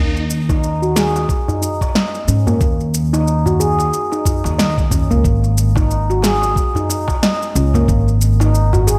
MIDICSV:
0, 0, Header, 1, 5, 480
1, 0, Start_track
1, 0, Key_signature, -6, "minor"
1, 0, Tempo, 659341
1, 1899, Time_signature, 4, 2, 24, 8
1, 6542, End_track
2, 0, Start_track
2, 0, Title_t, "Handpan"
2, 0, Program_c, 0, 114
2, 360, Note_on_c, 0, 63, 92
2, 417, Note_off_c, 0, 63, 0
2, 598, Note_on_c, 0, 66, 72
2, 689, Note_off_c, 0, 66, 0
2, 698, Note_on_c, 0, 68, 94
2, 779, Note_off_c, 0, 68, 0
2, 1078, Note_on_c, 0, 63, 85
2, 1169, Note_off_c, 0, 63, 0
2, 1179, Note_on_c, 0, 63, 70
2, 1312, Note_off_c, 0, 63, 0
2, 1420, Note_on_c, 0, 75, 70
2, 1500, Note_off_c, 0, 75, 0
2, 1662, Note_on_c, 0, 61, 70
2, 1794, Note_off_c, 0, 61, 0
2, 1799, Note_on_c, 0, 58, 96
2, 2265, Note_off_c, 0, 58, 0
2, 2280, Note_on_c, 0, 63, 97
2, 2337, Note_off_c, 0, 63, 0
2, 2521, Note_on_c, 0, 66, 73
2, 2610, Note_off_c, 0, 66, 0
2, 2620, Note_on_c, 0, 68, 91
2, 2700, Note_off_c, 0, 68, 0
2, 3000, Note_on_c, 0, 63, 86
2, 3090, Note_off_c, 0, 63, 0
2, 3100, Note_on_c, 0, 63, 74
2, 3233, Note_off_c, 0, 63, 0
2, 3338, Note_on_c, 0, 75, 74
2, 3419, Note_off_c, 0, 75, 0
2, 3578, Note_on_c, 0, 61, 71
2, 3712, Note_off_c, 0, 61, 0
2, 3717, Note_on_c, 0, 58, 93
2, 3818, Note_off_c, 0, 58, 0
2, 4199, Note_on_c, 0, 63, 96
2, 4256, Note_off_c, 0, 63, 0
2, 4440, Note_on_c, 0, 66, 74
2, 4530, Note_off_c, 0, 66, 0
2, 4538, Note_on_c, 0, 68, 96
2, 4619, Note_off_c, 0, 68, 0
2, 4920, Note_on_c, 0, 63, 87
2, 5010, Note_off_c, 0, 63, 0
2, 5021, Note_on_c, 0, 63, 76
2, 5153, Note_off_c, 0, 63, 0
2, 5263, Note_on_c, 0, 75, 75
2, 5341, Note_off_c, 0, 75, 0
2, 5504, Note_on_c, 0, 61, 70
2, 5635, Note_off_c, 0, 61, 0
2, 5642, Note_on_c, 0, 58, 99
2, 6107, Note_off_c, 0, 58, 0
2, 6121, Note_on_c, 0, 63, 93
2, 6177, Note_off_c, 0, 63, 0
2, 6360, Note_on_c, 0, 66, 67
2, 6450, Note_off_c, 0, 66, 0
2, 6460, Note_on_c, 0, 68, 95
2, 6540, Note_off_c, 0, 68, 0
2, 6542, End_track
3, 0, Start_track
3, 0, Title_t, "Upright bass"
3, 0, Program_c, 1, 32
3, 0, Note_on_c, 1, 39, 91
3, 904, Note_off_c, 1, 39, 0
3, 1658, Note_on_c, 1, 44, 89
3, 1854, Note_off_c, 1, 44, 0
3, 1899, Note_on_c, 1, 39, 93
3, 2823, Note_off_c, 1, 39, 0
3, 3241, Note_on_c, 1, 39, 85
3, 3670, Note_off_c, 1, 39, 0
3, 3719, Note_on_c, 1, 37, 74
3, 3797, Note_off_c, 1, 37, 0
3, 3818, Note_on_c, 1, 32, 98
3, 4743, Note_off_c, 1, 32, 0
3, 5500, Note_on_c, 1, 37, 93
3, 5695, Note_off_c, 1, 37, 0
3, 5740, Note_on_c, 1, 32, 102
3, 6542, Note_off_c, 1, 32, 0
3, 6542, End_track
4, 0, Start_track
4, 0, Title_t, "Darbuka"
4, 113, Note_on_c, 9, 62, 37
4, 185, Note_off_c, 9, 62, 0
4, 361, Note_on_c, 9, 63, 60
4, 433, Note_off_c, 9, 63, 0
4, 700, Note_on_c, 9, 63, 57
4, 773, Note_off_c, 9, 63, 0
4, 844, Note_on_c, 9, 62, 69
4, 916, Note_off_c, 9, 62, 0
4, 1079, Note_on_c, 9, 64, 76
4, 1152, Note_off_c, 9, 64, 0
4, 1323, Note_on_c, 9, 62, 62
4, 1324, Note_on_c, 9, 63, 70
4, 1396, Note_off_c, 9, 62, 0
4, 1397, Note_off_c, 9, 63, 0
4, 1797, Note_on_c, 9, 64, 83
4, 1802, Note_on_c, 9, 62, 46
4, 1870, Note_off_c, 9, 64, 0
4, 1875, Note_off_c, 9, 62, 0
4, 2284, Note_on_c, 9, 63, 57
4, 2357, Note_off_c, 9, 63, 0
4, 2517, Note_on_c, 9, 64, 80
4, 2590, Note_off_c, 9, 64, 0
4, 2757, Note_on_c, 9, 62, 63
4, 2830, Note_off_c, 9, 62, 0
4, 2997, Note_on_c, 9, 63, 36
4, 3070, Note_off_c, 9, 63, 0
4, 3103, Note_on_c, 9, 64, 78
4, 3176, Note_off_c, 9, 64, 0
4, 3234, Note_on_c, 9, 63, 69
4, 3307, Note_off_c, 9, 63, 0
4, 3577, Note_on_c, 9, 64, 81
4, 3649, Note_off_c, 9, 64, 0
4, 3959, Note_on_c, 9, 62, 34
4, 4032, Note_off_c, 9, 62, 0
4, 4190, Note_on_c, 9, 63, 64
4, 4263, Note_off_c, 9, 63, 0
4, 4531, Note_on_c, 9, 63, 52
4, 4604, Note_off_c, 9, 63, 0
4, 4672, Note_on_c, 9, 62, 65
4, 4745, Note_off_c, 9, 62, 0
4, 4914, Note_on_c, 9, 64, 75
4, 4986, Note_off_c, 9, 64, 0
4, 5152, Note_on_c, 9, 63, 74
4, 5157, Note_on_c, 9, 62, 57
4, 5225, Note_off_c, 9, 63, 0
4, 5230, Note_off_c, 9, 62, 0
4, 5636, Note_on_c, 9, 62, 43
4, 5636, Note_on_c, 9, 64, 86
4, 5708, Note_off_c, 9, 62, 0
4, 5708, Note_off_c, 9, 64, 0
4, 5870, Note_on_c, 9, 62, 31
4, 5943, Note_off_c, 9, 62, 0
4, 6115, Note_on_c, 9, 63, 63
4, 6188, Note_off_c, 9, 63, 0
4, 6354, Note_on_c, 9, 64, 90
4, 6427, Note_off_c, 9, 64, 0
4, 6542, End_track
5, 0, Start_track
5, 0, Title_t, "Drums"
5, 122, Note_on_c, 9, 82, 19
5, 194, Note_off_c, 9, 82, 0
5, 220, Note_on_c, 9, 82, 69
5, 293, Note_off_c, 9, 82, 0
5, 360, Note_on_c, 9, 36, 98
5, 362, Note_on_c, 9, 82, 29
5, 432, Note_off_c, 9, 36, 0
5, 434, Note_off_c, 9, 82, 0
5, 463, Note_on_c, 9, 82, 41
5, 536, Note_off_c, 9, 82, 0
5, 603, Note_on_c, 9, 82, 20
5, 676, Note_off_c, 9, 82, 0
5, 702, Note_on_c, 9, 38, 77
5, 703, Note_on_c, 9, 82, 70
5, 775, Note_off_c, 9, 38, 0
5, 776, Note_off_c, 9, 82, 0
5, 843, Note_on_c, 9, 82, 28
5, 916, Note_off_c, 9, 82, 0
5, 939, Note_on_c, 9, 36, 89
5, 944, Note_on_c, 9, 82, 39
5, 1012, Note_off_c, 9, 36, 0
5, 1017, Note_off_c, 9, 82, 0
5, 1085, Note_on_c, 9, 82, 22
5, 1158, Note_off_c, 9, 82, 0
5, 1184, Note_on_c, 9, 82, 70
5, 1257, Note_off_c, 9, 82, 0
5, 1319, Note_on_c, 9, 36, 59
5, 1325, Note_on_c, 9, 82, 30
5, 1392, Note_off_c, 9, 36, 0
5, 1398, Note_off_c, 9, 82, 0
5, 1422, Note_on_c, 9, 38, 78
5, 1424, Note_on_c, 9, 82, 39
5, 1495, Note_off_c, 9, 38, 0
5, 1496, Note_off_c, 9, 82, 0
5, 1563, Note_on_c, 9, 82, 21
5, 1636, Note_off_c, 9, 82, 0
5, 1662, Note_on_c, 9, 82, 66
5, 1735, Note_off_c, 9, 82, 0
5, 1802, Note_on_c, 9, 82, 30
5, 1875, Note_off_c, 9, 82, 0
5, 1898, Note_on_c, 9, 36, 114
5, 1900, Note_on_c, 9, 82, 41
5, 1971, Note_off_c, 9, 36, 0
5, 1973, Note_off_c, 9, 82, 0
5, 2042, Note_on_c, 9, 82, 20
5, 2115, Note_off_c, 9, 82, 0
5, 2142, Note_on_c, 9, 82, 77
5, 2215, Note_off_c, 9, 82, 0
5, 2285, Note_on_c, 9, 82, 33
5, 2358, Note_off_c, 9, 82, 0
5, 2386, Note_on_c, 9, 82, 41
5, 2458, Note_off_c, 9, 82, 0
5, 2526, Note_on_c, 9, 82, 23
5, 2598, Note_off_c, 9, 82, 0
5, 2625, Note_on_c, 9, 82, 75
5, 2698, Note_off_c, 9, 82, 0
5, 2765, Note_on_c, 9, 82, 32
5, 2838, Note_off_c, 9, 82, 0
5, 2864, Note_on_c, 9, 82, 42
5, 2936, Note_off_c, 9, 82, 0
5, 3005, Note_on_c, 9, 82, 23
5, 3078, Note_off_c, 9, 82, 0
5, 3097, Note_on_c, 9, 36, 61
5, 3102, Note_on_c, 9, 82, 77
5, 3170, Note_off_c, 9, 36, 0
5, 3175, Note_off_c, 9, 82, 0
5, 3245, Note_on_c, 9, 82, 34
5, 3318, Note_off_c, 9, 82, 0
5, 3344, Note_on_c, 9, 38, 80
5, 3345, Note_on_c, 9, 82, 45
5, 3417, Note_off_c, 9, 38, 0
5, 3418, Note_off_c, 9, 82, 0
5, 3478, Note_on_c, 9, 36, 102
5, 3483, Note_on_c, 9, 82, 22
5, 3551, Note_off_c, 9, 36, 0
5, 3556, Note_off_c, 9, 82, 0
5, 3577, Note_on_c, 9, 36, 94
5, 3580, Note_on_c, 9, 82, 70
5, 3650, Note_off_c, 9, 36, 0
5, 3653, Note_off_c, 9, 82, 0
5, 3722, Note_on_c, 9, 82, 30
5, 3795, Note_off_c, 9, 82, 0
5, 3817, Note_on_c, 9, 36, 110
5, 3822, Note_on_c, 9, 82, 44
5, 3890, Note_off_c, 9, 36, 0
5, 3895, Note_off_c, 9, 82, 0
5, 3960, Note_on_c, 9, 82, 19
5, 4033, Note_off_c, 9, 82, 0
5, 4060, Note_on_c, 9, 82, 75
5, 4133, Note_off_c, 9, 82, 0
5, 4197, Note_on_c, 9, 36, 109
5, 4202, Note_on_c, 9, 82, 33
5, 4270, Note_off_c, 9, 36, 0
5, 4275, Note_off_c, 9, 82, 0
5, 4302, Note_on_c, 9, 82, 41
5, 4375, Note_off_c, 9, 82, 0
5, 4445, Note_on_c, 9, 82, 21
5, 4517, Note_off_c, 9, 82, 0
5, 4541, Note_on_c, 9, 38, 79
5, 4543, Note_on_c, 9, 82, 77
5, 4614, Note_off_c, 9, 38, 0
5, 4616, Note_off_c, 9, 82, 0
5, 4683, Note_on_c, 9, 82, 31
5, 4756, Note_off_c, 9, 82, 0
5, 4776, Note_on_c, 9, 36, 92
5, 4784, Note_on_c, 9, 82, 44
5, 4849, Note_off_c, 9, 36, 0
5, 4857, Note_off_c, 9, 82, 0
5, 4924, Note_on_c, 9, 82, 24
5, 4996, Note_off_c, 9, 82, 0
5, 5025, Note_on_c, 9, 82, 83
5, 5098, Note_off_c, 9, 82, 0
5, 5157, Note_on_c, 9, 36, 62
5, 5166, Note_on_c, 9, 82, 35
5, 5230, Note_off_c, 9, 36, 0
5, 5239, Note_off_c, 9, 82, 0
5, 5263, Note_on_c, 9, 38, 75
5, 5264, Note_on_c, 9, 82, 44
5, 5336, Note_off_c, 9, 38, 0
5, 5337, Note_off_c, 9, 82, 0
5, 5406, Note_on_c, 9, 82, 22
5, 5478, Note_off_c, 9, 82, 0
5, 5502, Note_on_c, 9, 82, 73
5, 5575, Note_off_c, 9, 82, 0
5, 5643, Note_on_c, 9, 82, 31
5, 5716, Note_off_c, 9, 82, 0
5, 5738, Note_on_c, 9, 36, 110
5, 5743, Note_on_c, 9, 82, 43
5, 5811, Note_off_c, 9, 36, 0
5, 5815, Note_off_c, 9, 82, 0
5, 5884, Note_on_c, 9, 82, 21
5, 5957, Note_off_c, 9, 82, 0
5, 5980, Note_on_c, 9, 82, 74
5, 6053, Note_off_c, 9, 82, 0
5, 6122, Note_on_c, 9, 82, 31
5, 6195, Note_off_c, 9, 82, 0
5, 6223, Note_on_c, 9, 82, 40
5, 6296, Note_off_c, 9, 82, 0
5, 6364, Note_on_c, 9, 82, 22
5, 6437, Note_off_c, 9, 82, 0
5, 6464, Note_on_c, 9, 82, 80
5, 6536, Note_off_c, 9, 82, 0
5, 6542, End_track
0, 0, End_of_file